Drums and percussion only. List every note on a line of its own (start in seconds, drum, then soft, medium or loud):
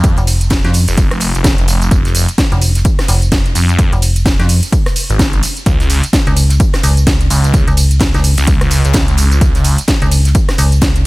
0.04 kick loud
0.04 closed hi-hat medium
0.04 ride medium
0.04 tambourine soft
0.16 closed hi-hat soft
0.16 ride soft
0.16 tambourine soft
0.27 open hi-hat loud
0.27 ride medium
0.27 tambourine medium
0.41 closed hi-hat medium
0.41 tambourine soft
0.50 kick loud
0.50 snare loud
0.50 closed hi-hat medium
0.50 ride medium
0.50 tambourine soft
0.65 snare soft
0.65 closed hi-hat soft
0.65 tambourine soft
0.73 open hi-hat medium
0.73 open hi-hat loud
0.73 ride medium
0.73 tambourine medium
0.88 closed hi-hat medium
0.88 tambourine soft
0.97 kick loud
0.97 closed hi-hat medium
0.97 ride medium
0.97 tambourine soft
1.11 cross-stick medium
1.11 closed hi-hat soft
1.11 tambourine soft
1.20 open hi-hat loud
1.20 ride medium
1.20 tambourine medium
1.35 closed hi-hat soft
1.35 ride soft
1.35 tambourine soft
1.44 kick loud
1.44 snare loud
1.44 closed hi-hat medium
1.44 ride medium
1.44 tambourine soft
1.58 closed hi-hat soft
1.58 tambourine soft
1.68 snare soft
1.68 open hi-hat loud
1.68 ride medium
1.68 tambourine medium
1.82 closed hi-hat soft
1.82 tambourine soft
1.91 kick loud
1.91 closed hi-hat medium
1.91 ride medium
1.91 tambourine soft
2.05 snare soft
2.05 closed hi-hat soft
2.05 tambourine soft
2.15 open hi-hat loud
2.15 ride medium
2.15 tambourine medium
2.29 closed hi-hat soft
2.29 tambourine soft
2.38 kick loud
2.38 snare loud
2.38 closed hi-hat medium
2.38 ride medium
2.38 tambourine soft
2.52 closed hi-hat soft
2.52 tambourine soft
2.62 open hi-hat loud
2.62 ride medium
2.62 tambourine medium
2.75 snare soft
2.75 closed hi-hat medium
2.75 tambourine soft
2.85 kick loud
2.85 closed hi-hat medium
2.85 ride medium
2.85 tambourine soft
2.99 cross-stick medium
2.99 snare soft
2.99 snare medium
2.99 closed hi-hat soft
2.99 tambourine soft
3.08 open hi-hat loud
3.08 ride medium
3.08 tambourine medium
3.22 closed hi-hat soft
3.22 tambourine soft
3.32 kick loud
3.32 snare loud
3.32 closed hi-hat medium
3.32 ride medium
3.32 tambourine soft
3.46 closed hi-hat soft
3.46 tambourine soft
3.55 open hi-hat loud
3.55 ride medium
3.55 tambourine medium
3.69 closed hi-hat soft
3.69 tambourine soft
3.79 kick loud
3.79 closed hi-hat medium
3.79 ride medium
3.79 tambourine soft
3.93 closed hi-hat soft
3.93 ride soft
3.93 tambourine soft
4.02 open hi-hat loud
4.02 ride medium
4.02 tambourine medium
4.16 closed hi-hat soft
4.16 tambourine soft
4.26 kick loud
4.26 snare loud
4.26 closed hi-hat medium
4.26 ride medium
4.26 tambourine soft
4.39 snare soft
4.39 closed hi-hat soft
4.39 tambourine soft
4.49 open hi-hat medium
4.49 open hi-hat loud
4.49 ride medium
4.49 tambourine medium
4.63 closed hi-hat medium
4.63 tambourine soft
4.73 kick loud
4.73 closed hi-hat medium
4.73 ride medium
4.73 tambourine soft
4.86 cross-stick medium
4.86 snare soft
4.86 closed hi-hat soft
4.86 tambourine soft
4.96 open hi-hat loud
4.96 ride medium
4.96 tambourine medium
5.10 closed hi-hat soft
5.10 tambourine soft
5.19 kick loud
5.19 snare loud
5.19 closed hi-hat medium
5.19 ride medium
5.19 tambourine soft
5.33 closed hi-hat soft
5.33 tambourine soft
5.43 snare soft
5.43 open hi-hat loud
5.43 ride medium
5.43 tambourine medium
5.57 closed hi-hat soft
5.57 tambourine soft
5.66 kick loud
5.66 closed hi-hat medium
5.66 ride medium
5.66 tambourine soft
5.80 snare soft
5.80 closed hi-hat soft
5.80 tambourine soft
5.90 open hi-hat loud
5.90 ride medium
5.90 tambourine medium
6.04 closed hi-hat medium
6.04 tambourine soft
6.13 kick loud
6.13 snare loud
6.13 closed hi-hat medium
6.13 ride medium
6.13 tambourine soft
6.27 closed hi-hat soft
6.27 tambourine soft
6.36 open hi-hat loud
6.36 ride medium
6.36 tambourine medium
6.49 snare soft
6.49 closed hi-hat medium
6.49 tambourine soft
6.60 kick loud
6.60 closed hi-hat medium
6.60 ride medium
6.60 tambourine soft
6.73 cross-stick medium
6.73 snare medium
6.73 snare soft
6.73 closed hi-hat soft
6.73 tambourine soft
6.83 open hi-hat loud
6.83 ride medium
6.83 tambourine medium
6.97 closed hi-hat soft
6.97 tambourine soft
7.07 kick loud
7.07 snare loud
7.07 closed hi-hat medium
7.07 ride medium
7.07 tambourine soft
7.21 closed hi-hat soft
7.21 tambourine soft
7.30 open hi-hat loud
7.30 ride medium
7.30 tambourine medium
7.44 closed hi-hat soft
7.44 tambourine soft
7.54 kick loud
7.54 closed hi-hat medium
7.54 ride medium
7.54 tambourine soft
7.67 closed hi-hat soft
7.67 ride soft
7.67 tambourine soft
7.77 open hi-hat loud
7.77 ride medium
7.77 tambourine medium
7.91 closed hi-hat medium
7.91 tambourine soft
8.00 kick loud
8.00 snare loud
8.00 closed hi-hat medium
8.00 ride medium
8.00 tambourine soft
8.14 snare soft
8.14 closed hi-hat soft
8.14 tambourine soft
8.24 open hi-hat loud
8.24 open hi-hat medium
8.24 ride medium
8.24 tambourine medium
8.38 closed hi-hat medium
8.38 tambourine soft
8.47 kick loud
8.47 closed hi-hat medium
8.47 ride medium
8.47 tambourine soft
8.61 cross-stick medium
8.61 closed hi-hat soft
8.61 tambourine soft
8.71 open hi-hat loud
8.71 ride medium
8.71 tambourine medium
8.85 closed hi-hat soft
8.85 ride soft
8.85 tambourine soft
8.93 kick loud
8.93 snare loud
8.93 closed hi-hat medium
8.93 ride medium
8.93 tambourine soft
9.08 closed hi-hat soft
9.08 tambourine soft
9.17 snare soft
9.17 open hi-hat loud
9.17 ride medium
9.17 tambourine medium
9.32 closed hi-hat soft
9.32 tambourine soft
9.41 kick loud
9.41 closed hi-hat medium
9.41 ride medium
9.41 tambourine soft
9.55 snare soft
9.55 closed hi-hat soft
9.55 tambourine soft
9.64 open hi-hat loud
9.64 ride medium
9.64 tambourine medium
9.78 closed hi-hat medium
9.78 tambourine soft
9.88 kick loud
9.88 snare loud
9.88 closed hi-hat medium
9.88 ride medium
9.88 tambourine soft
10.02 closed hi-hat soft
10.02 tambourine soft
10.11 open hi-hat loud
10.11 ride medium
10.11 tambourine medium
10.25 snare soft
10.25 closed hi-hat medium
10.25 tambourine soft
10.35 kick loud
10.35 closed hi-hat medium
10.35 ride loud
10.35 ride medium
10.35 tambourine soft
10.49 cross-stick medium
10.49 snare soft
10.49 snare medium
10.49 closed hi-hat soft
10.49 tambourine soft
10.58 open hi-hat loud
10.58 ride medium
10.58 tambourine medium
10.72 closed hi-hat soft
10.72 tambourine soft
10.81 kick loud
10.81 snare loud
10.81 closed hi-hat medium
10.81 ride medium
10.81 tambourine soft
10.96 closed hi-hat soft
10.96 tambourine soft